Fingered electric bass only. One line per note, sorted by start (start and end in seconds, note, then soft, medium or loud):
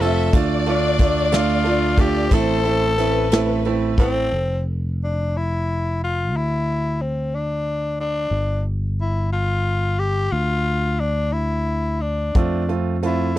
0.00 0.29 F1 loud
0.33 2.27 D2 loud
2.31 4.28 A1 medium
4.32 6.32 F1 medium
6.32 8.28 D2 medium
8.31 10.28 G1 medium
10.32 12.31 D2 medium
12.35 13.39 F2 medium